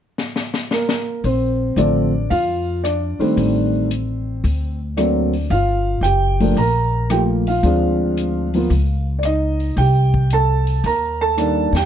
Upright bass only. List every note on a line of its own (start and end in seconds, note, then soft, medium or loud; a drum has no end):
1.24 1.73 A#1 medium
1.76 2.26 A1 medium
2.31 3.16 F2 medium
3.19 muted upright bass stroke soft
3.37 4.40 A1 medium
4.44 5.46 D2 medium
5.50 6.00 G1 medium
6.01 6.52 F#1 medium
6.57 7.59 A#1 medium
7.63 8.66 D2 medium
8.70 9.73 C#2 medium
9.77 10.79 C2 medium
10.84 11.69 D#2 medium
11.72 11.85 E2 medium